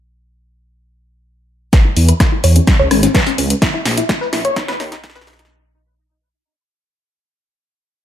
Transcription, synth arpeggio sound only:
0, 0, Header, 1, 2, 480
1, 0, Start_track
1, 0, Key_signature, 5, "minor"
1, 0, Tempo, 472441
1, 1757, Time_signature, 4, 2, 24, 8
1, 8171, End_track
2, 0, Start_track
2, 0, Title_t, "Synth arpeggio sound"
2, 0, Program_c, 0, 84
2, 1757, Note_on_c, 0, 71, 96
2, 1828, Note_off_c, 0, 71, 0
2, 1879, Note_on_c, 0, 64, 64
2, 1948, Note_off_c, 0, 64, 0
2, 1997, Note_on_c, 0, 64, 61
2, 2068, Note_off_c, 0, 64, 0
2, 2119, Note_on_c, 0, 71, 92
2, 2188, Note_off_c, 0, 71, 0
2, 2238, Note_on_c, 0, 64, 64
2, 2308, Note_off_c, 0, 64, 0
2, 2359, Note_on_c, 0, 64, 61
2, 2428, Note_off_c, 0, 64, 0
2, 2478, Note_on_c, 0, 73, 94
2, 2549, Note_off_c, 0, 73, 0
2, 2600, Note_on_c, 0, 61, 63
2, 2668, Note_off_c, 0, 61, 0
2, 2718, Note_on_c, 0, 61, 63
2, 2789, Note_off_c, 0, 61, 0
2, 2840, Note_on_c, 0, 73, 89
2, 2908, Note_off_c, 0, 73, 0
2, 2958, Note_on_c, 0, 61, 63
2, 3028, Note_off_c, 0, 61, 0
2, 3079, Note_on_c, 0, 61, 62
2, 3148, Note_off_c, 0, 61, 0
2, 3198, Note_on_c, 0, 71, 91
2, 3268, Note_off_c, 0, 71, 0
2, 3320, Note_on_c, 0, 61, 64
2, 3388, Note_off_c, 0, 61, 0
2, 3438, Note_on_c, 0, 61, 65
2, 3508, Note_off_c, 0, 61, 0
2, 3677, Note_on_c, 0, 64, 64
2, 3748, Note_off_c, 0, 64, 0
2, 3800, Note_on_c, 0, 64, 64
2, 3868, Note_off_c, 0, 64, 0
2, 4039, Note_on_c, 0, 64, 66
2, 4108, Note_off_c, 0, 64, 0
2, 4157, Note_on_c, 0, 64, 65
2, 4228, Note_off_c, 0, 64, 0
2, 4279, Note_on_c, 0, 71, 85
2, 4348, Note_off_c, 0, 71, 0
2, 4398, Note_on_c, 0, 64, 68
2, 4468, Note_off_c, 0, 64, 0
2, 4519, Note_on_c, 0, 73, 93
2, 4588, Note_off_c, 0, 73, 0
2, 4638, Note_on_c, 0, 63, 66
2, 4708, Note_off_c, 0, 63, 0
2, 4759, Note_on_c, 0, 71, 91
2, 4828, Note_off_c, 0, 71, 0
2, 4877, Note_on_c, 0, 63, 64
2, 4948, Note_off_c, 0, 63, 0
2, 5000, Note_on_c, 0, 63, 63
2, 5068, Note_off_c, 0, 63, 0
2, 5118, Note_on_c, 0, 63, 65
2, 5189, Note_off_c, 0, 63, 0
2, 5240, Note_on_c, 0, 71, 98
2, 5308, Note_off_c, 0, 71, 0
2, 5357, Note_on_c, 0, 63, 64
2, 5428, Note_off_c, 0, 63, 0
2, 5479, Note_on_c, 0, 63, 66
2, 5548, Note_off_c, 0, 63, 0
2, 8171, End_track
0, 0, End_of_file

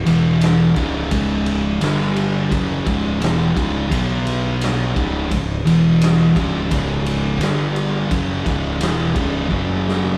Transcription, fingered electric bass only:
0, 0, Header, 1, 2, 480
1, 0, Start_track
1, 0, Tempo, 698487
1, 768, Time_signature, 4, 2, 24, 8
1, 6993, End_track
2, 0, Start_track
2, 0, Title_t, "Fingered electric bass"
2, 0, Program_c, 0, 33
2, 46, Note_on_c, 0, 28, 89
2, 500, Note_off_c, 0, 28, 0
2, 524, Note_on_c, 0, 25, 96
2, 749, Note_off_c, 0, 25, 0
2, 764, Note_on_c, 0, 25, 95
2, 1219, Note_off_c, 0, 25, 0
2, 1249, Note_on_c, 0, 31, 97
2, 1702, Note_off_c, 0, 31, 0
2, 1729, Note_on_c, 0, 30, 97
2, 1952, Note_off_c, 0, 30, 0
2, 1969, Note_on_c, 0, 25, 88
2, 2193, Note_off_c, 0, 25, 0
2, 2204, Note_on_c, 0, 28, 101
2, 2430, Note_off_c, 0, 28, 0
2, 2449, Note_on_c, 0, 25, 87
2, 2672, Note_off_c, 0, 25, 0
2, 2689, Note_on_c, 0, 35, 88
2, 3382, Note_off_c, 0, 35, 0
2, 3409, Note_on_c, 0, 25, 93
2, 3632, Note_off_c, 0, 25, 0
2, 3650, Note_on_c, 0, 25, 86
2, 3873, Note_off_c, 0, 25, 0
2, 3888, Note_on_c, 0, 28, 96
2, 4341, Note_off_c, 0, 28, 0
2, 4372, Note_on_c, 0, 25, 88
2, 4594, Note_off_c, 0, 25, 0
2, 4610, Note_on_c, 0, 25, 91
2, 5062, Note_off_c, 0, 25, 0
2, 5090, Note_on_c, 0, 31, 105
2, 5542, Note_off_c, 0, 31, 0
2, 5571, Note_on_c, 0, 30, 94
2, 5793, Note_off_c, 0, 30, 0
2, 5814, Note_on_c, 0, 25, 101
2, 6034, Note_off_c, 0, 25, 0
2, 6052, Note_on_c, 0, 28, 105
2, 6273, Note_off_c, 0, 28, 0
2, 6295, Note_on_c, 0, 25, 98
2, 6515, Note_off_c, 0, 25, 0
2, 6534, Note_on_c, 0, 30, 94
2, 6983, Note_off_c, 0, 30, 0
2, 6993, End_track
0, 0, End_of_file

